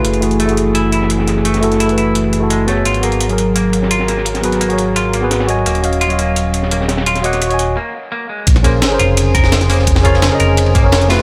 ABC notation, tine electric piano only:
X:1
M:4/4
L:1/16
Q:1/4=171
K:Abdor
V:1 name="Tine electric piano"
[=A,=EGc]2 [A,_FG_A]3 [=A,FG_A]8- [=A,FG_A]3- | [=A,_FG_A]2 [=A,FG=A]3 [A,FGc]6 [A,FGA]3 [CG_Ad]2- | [CGAd]2 [CGAB]3 [G,AB]8- [G,AB]3- | [G,AB]2 [CGAc]3 [GAd]6 [CGAc]3 [Gdea]2- |
[Gdea]2 [Gdef]3 [G,def]8- [G,def]3- | [G,def]2 [Gdeg]3 [Gdea]3 z8 | z2 [DAB=c]3 [DABc]8- [DABc]3- | [DAB=c]2 [DABd]3 [DABe]6 [DABd]3 [=A,=EG_c]2 |]